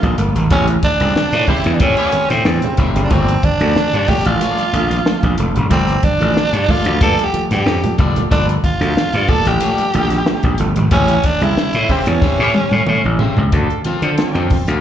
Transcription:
Already playing: F4
0.02 A#1 G2 D3, kick, closed hi-hat, low conga
0.18 G1 A3 A#3, closed hi-hat
0.35 G#1, closed hi-hat, low conga
0.50 A1 C#3 G3 C4 C#4 G4 C5 E5, kick, closed hi-hat
0.68 closed hi-hat, muted conga
0.83 A2 D4, kick, closed hi-hat, high conga
1.00 C2 C#3 G3 C4, closed hi-hat
1.16 muted slap bass stroke, snare, muted conga, high conga
1.32 A2, closed hi-hat
1.47 C#3 G3 C4 C#4 E4 G4 C5 E5, kick, open hi-hat, high conga, low conga
1.64 E2, closed hi-hat
1.74 D4
1.80 A2 G3 C4 C#4 G4 C5 E5, kick, closed hi-hat, muted conga
1.97 A2 E4 G4 C#5, closed hi-hat
2.12 G3 C4, muted slap bass stroke, closed hi-hat, high conga
2.30 A2 C4, snare, closed hi-hat, high conga
2.45 E2, snare, muted conga
2.62 C#3 G3 C4, closed hi-hat, low conga
2.77 F1 A2 C#4 G4 C5 E5, kick, closed hi-hat
2.95 F#1 C#3 G3 C4, closed hi-hat
3.04 D4
3.10 G1 A#2 F3 A3 A#3 C4 F4 A4 D5, kick, closed hi-hat, muted conga
3.28 closed hi-hat
3.43 G2 D4, kick, closed hi-hat, high conga
3.60 D2 A#2 F3 A3, closed hi-hat
3.76 muted slap bass stroke, snare, muted conga, high conga
3.93 G2, closed hi-hat
4.08 A#2 F3 A3 A#3 F4 G4 A4 D5, kick, open hi-hat, high conga, low conga
4.25 A1 F4, closed hi-hat
4.40 F3 A3 A#3 F4 A4 D5, closed hi-hat, muted conga
4.58 G2, closed hi-hat, muted conga
4.73 A#1 F3 A3, closed hi-hat, high conga
4.91 snare, closed hi-hat, high conga
5.06 F3 A3, snare, muted conga
5.23 A#1 G2, kick, closed hi-hat, muted conga, low conga
5.38 F1 F3 A3, closed hi-hat
5.56 F#1, closed hi-hat, low conga
5.70 G1 A#2 F3 A3 A#3 C4 F4 A4 D5, kick, closed hi-hat
5.88 closed hi-hat, muted conga
6.03 G2 D4, kick, closed hi-hat, high conga
6.20 A1 A#2 F3 A3, closed hi-hat
6.37 snare, muted conga, high conga
6.53 G2, closed hi-hat, muted conga
6.68 A#2 F3 A3 A#3 F4 A4 D5, kick, open hi-hat, high conga, low conga
6.85 D2, closed hi-hat
7.01 G2 F3 A3 A#3 F4 A4 D5, kick, closed hi-hat
7.18 G2, closed hi-hat, muted conga
7.24 G4
7.33 F3 A3, muted slap bass stroke, closed hi-hat, high conga
7.51 G2 G4, snare, closed hi-hat, high conga
7.66 F2, snare, muted conga
7.83 A#2 F3 A3, closed hi-hat, muted conga, low conga
7.98 F#1 G2 A#3 F4 A4 D5, kick, closed hi-hat
8.16 A#2 F3 A3, closed hi-hat, low conga
8.31 G1 A#2 F3 A3 A#3 D4 F4 A4 D5, kick, closed hi-hat
8.49 closed hi-hat, muted conga
8.64 G2 F4, kick, closed hi-hat, high conga
8.81 D2 A#2 F3 A3, closed hi-hat
8.96 muted slap bass stroke, snare, high conga
9.13 G2, closed hi-hat, muted conga
9.28 A#2 F3 A3 A#3 F4 A4 D5, kick, open hi-hat, high conga, low conga
9.45 A1 G4, closed hi-hat
9.60 F3 A3 A#3 F4 A4 D5, closed hi-hat
9.78 G2, closed hi-hat
9.94 A#1 F3 A3, closed hi-hat, high conga
10.10 snare, closed hi-hat, high conga
10.26 F3 A3, snare, muted conga
10.43 A#1 G2, kick, closed hi-hat, muted conga, low conga
10.58 G1 F3 A3, closed hi-hat
10.76 G#1, closed hi-hat, low conga
10.91 A1 C#3 G3 C4 C#4 G4 C5 E5, kick, closed hi-hat
11.08 closed hi-hat
11.24 A2 D4, kick, closed hi-hat, high conga
11.41 C2 C#3 G3 C4 E4, closed hi-hat
11.57 muted slap bass stroke, snare, high conga
11.73 A2, closed hi-hat
11.88 C#3 G3 C4 C#4 E4 G4 C5 E5, kick, open hi-hat, high conga, low conga
12.06 E2 C#4, closed hi-hat
12.21 G3 C4 C#4 G4 C5 E5, kick, snare, muted conga, high conga
12.39 A2 E4 G4 C#5, muted conga
12.54 G3 C4, high tom, high conga
12.72 A2, high tom, high conga
12.87 A2, mid tom, muted conga
13.04 A1, muted conga, low conga
13.19 C#3 G3 C4 C#4 G4 C5 E5, floor tom
13.37 C#2 G3 C4, floor tom, low conga
13.52 D2 D3 D4 F4 A4, kick, closed hi-hat
13.70 closed hi-hat
13.85 F3 C4 F4 A4 C5 F5, muted slap bass stroke, closed hi-hat, high conga
14.02 D3 F4 A4 C5, closed hi-hat
14.18 F3 C4, snare, closed hi-hat, muted conga, high conga
14.35 F2 D3 F4 A4 C5 G5, closed hi-hat, muted conga
14.50 F3 C4, kick, open hi-hat, high conga, low conga
14.67 D2 F4 A4 C5 F5, closed hi-hat

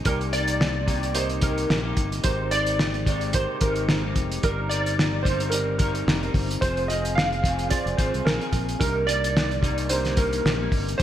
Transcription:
0.04 C2 C3 A#3 D#4 G4 A#4, kick, closed hi-hat
0.09 D5
0.21 closed hi-hat
0.31 C3 A#3 D#4 G4 D5, closed hi-hat
0.48 closed hi-hat
0.61 snare
0.86 C3 A#3 D#4 G4, kick, closed hi-hat
1.03 closed hi-hat
1.13 C3 A#3 D#4 G4 A#4 C5, closed hi-hat
1.17 D#5
1.29 closed hi-hat
1.41 C3 A#3 D#4 G4 A#4, kick, closed hi-hat
1.58 closed hi-hat
1.70 A#1, snare
1.83 C3 A#3 D#4 G4
1.97 G1, kick, closed hi-hat
2.12 closed hi-hat
2.23 G#1 G#3 C4 D#4 G4 A#4 C5, kick, closed hi-hat
2.51 G#3 C4 D#4 G4 D5, closed hi-hat
2.66 closed hi-hat
2.79 snare
2.94 closed hi-hat
3.06 G#3 C4 D#4 G4, kick, closed hi-hat
3.21 closed hi-hat
3.33 G#3 C4 D#4 G4 A#4 C5, kick, closed hi-hat
3.60 G#1 G#3 C4 D#4 G4 A#4, kick, closed hi-hat
3.76 closed hi-hat
3.89 snare
4.04 G#3 C4 D#4 G4
4.16 F1, kick, closed hi-hat
4.32 closed hi-hat
4.43 G1 G3 C4 D#4 G4 A#4 D5, kick, closed hi-hat
4.47 A#4
4.69 G3 C4 D#4 A#4 D5, closed hi-hat
4.86 closed hi-hat
4.99 snare
5.23 G3 C4 D#4 A#4 C5, kick, closed hi-hat
5.40 closed hi-hat
5.50 G3 C4 D#4 G4 A#4, closed hi-hat
5.54 D#4 A#4 D5
5.78 G3 C4 D#4 A#4, kick, closed hi-hat
5.95 closed hi-hat
6.07 F1, snare
6.21 G3 C4 D#4 A#4, closed hi-hat
6.34 G1, kick, open hi-hat
6.51 closed hi-hat
6.61 F1 F3 C4 F4 G#4 C5, kick, closed hi-hat
6.77 closed hi-hat
6.88 F3 C4 F4 G#4 D#5, closed hi-hat
7.05 closed hi-hat
7.15 F5, snare
7.33 closed hi-hat
7.43 F3 C4 F4 G#4, kick, closed hi-hat
7.59 closed hi-hat
7.70 F3 C4 F4 G#4 C5 D5, kick, closed hi-hat
7.86 F1, closed hi-hat
7.97 G#1 F3 C4 F4 G#4 C5, kick, closed hi-hat
8.14 C2, closed hi-hat
8.25 A#1 A#4, snare
8.39 F3 C4 F4 G#4, closed hi-hat
8.53 A#1, kick, closed hi-hat
8.69 closed hi-hat
8.79 C2 C3 G3 A#3 D4 D#4 G4 A#4, kick, closed hi-hat
9.06 C3 G3 A#3 D#4 D5, closed hi-hat
9.24 closed hi-hat
9.37 snare
9.51 closed hi-hat
9.61 C3 G3 A#3 D#4, kick, closed hi-hat
9.78 closed hi-hat
9.88 C3 G3 A#3 D4 D#4 G4 C5, closed hi-hat
9.92 A#4
10.05 snare, closed hi-hat
10.16 C3 G3 A#3 D#4 A#4, kick, closed hi-hat
10.33 closed hi-hat
10.45 A#1, snare
10.59 C3 G3 A#3 D#4
10.72 G1, kick, open hi-hat
10.89 closed hi-hat
10.98 G#2 G3 C4 C5, kick, closed hi-hat

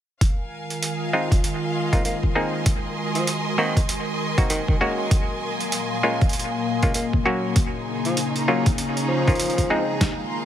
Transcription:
0.21 D#3 G#3 F4 F5, kick, closed hi-hat
0.27 A#4
0.39 G#5
0.70 closed hi-hat
0.83 closed hi-hat
0.94 D#5
1.13 G#3 C4 D#4 F4
1.32 C6, kick, closed hi-hat
1.44 closed hi-hat
1.93 G#3 A#3 C4 D#4 F4, kick, closed hi-hat
2.05 A#3, closed hi-hat
2.23 kick
2.35 A#3 C4 D#4 G#4
2.66 D#3 F#4, kick, closed hi-hat
3.15 F3, closed hi-hat
3.27 closed hi-hat
3.58 D#3 A#3 C4 D#4 F#4
3.77 kick, closed hi-hat
3.89 closed hi-hat
4.38 A#3 C4 D#4 F#4, kick, closed hi-hat
4.50 D#3, closed hi-hat
4.68 D#3, kick
4.81 G#3 A#3 C#4 F#4
5.11 A#2 F#3 A#3 F5, kick, closed hi-hat
5.60 closed hi-hat
5.72 closed hi-hat
6.03 G#3 A#3 C#4 F4
6.21 kick, closed hi-hat
6.29 closed hi-hat
6.33 closed hi-hat
6.39 closed hi-hat
6.83 G#3 A#3 C#4 F4, kick, closed hi-hat
6.94 A#3, closed hi-hat
7.13 kick
7.25 F#3 A#3 C#4 F#4
7.56 C#3 D#4, kick, closed hi-hat
7.75 G#4
8.05 F3, closed hi-hat
8.17 closed hi-hat
8.25 C#4
8.36 closed hi-hat
8.41 A#5
8.48 F#3 A#3 C#4 F4
8.66 kick, closed hi-hat
8.78 closed hi-hat
8.97 closed hi-hat
9.09 F3
9.28 D#3 A#3 C#4 F4, kick, closed hi-hat
9.29 closed hi-hat
9.35 closed hi-hat
9.39 closed hi-hat
9.46 closed hi-hat
9.50 closed hi-hat
9.58 kick, closed hi-hat
9.70 G#3 C4 D#4 G#4
10.00 D#3 G#3 F4 F5, kick, snare, closed hi-hat
10.21 A#4 C6

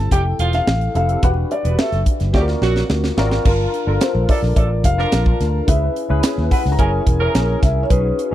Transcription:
Already playing: C4 E4 G4 A4 A5
0.11 F1 G3 G4 G5, kick, closed hi-hat
0.39 E1 F3 F4, closed hi-hat
0.53 F5, snare, closed hi-hat
0.67 A1, snare
0.81 closed hi-hat
0.94 F1 C4 E4 G4 A4 F5, closed hi-hat
1.09 closed hi-hat
1.23 E1 D4 F#4 G4 B4 F#5, kick, closed hi-hat
1.51 D5, closed hi-hat
1.64 E1 B3 B4, closed hi-hat
1.78 A3 A4 E5, snare
1.92 F#1, snare, closed hi-hat
2.06 kick, closed hi-hat
2.20 F#1, snare, closed hi-hat
2.34 D2 G3 C4 F4 F#4 G4 A4 D5, kick, snare
2.41 A#4
2.48 snare
2.62 A#1 F#3 F#4, snare
2.76 snare
2.90 D2, snare
3.04 snare
3.17 G#1 C4 F4 F#4 A#4 D5, snare
3.31 snare
3.45 G1 D4 F4 A#4 A5, kick, crash
3.74 closed hi-hat
3.87 G1 D4 F4 A4 A#4
4.01 C5, snare, closed hi-hat
4.15 A#1
4.29 F3 D4 A4 D5, kick, open hi-hat
4.43 A#1, snare
4.56 A1 F3 D4 A4 D5, kick, closed hi-hat
4.84 F1 F5, kick, closed hi-hat
4.98 F3 D4 F4 A#4 A5, snare
5.12 A#1, snare, closed hi-hat
5.26 kick
5.40 D2, snare, closed hi-hat
5.67 C#2 C#4 E4 G#4 B4 E5, kick, closed hi-hat
5.96 closed hi-hat
6.09 C#2 C#4 E4 G#4 B4
6.23 snare, closed hi-hat
6.37 D#2, snare
6.51 G#3 E4 B4 F#5, kick, open hi-hat
6.65 C#2, snare
6.72 A#5
6.78 F#1 E3 C#4 E4 G#4 A#4 G#5, kick, closed hi-hat
7.07 E1, kick, closed hi-hat
7.20 E3 C#4 E4 G#4 A#4
7.35 A#1, snare, closed hi-hat
7.63 C2 E5, kick, snare, closed hi-hat
7.83 C#5
7.90 B1 C#4 D#4 F#4 G#4 B4, kick, closed hi-hat
8.19 closed hi-hat
8.31 C#4

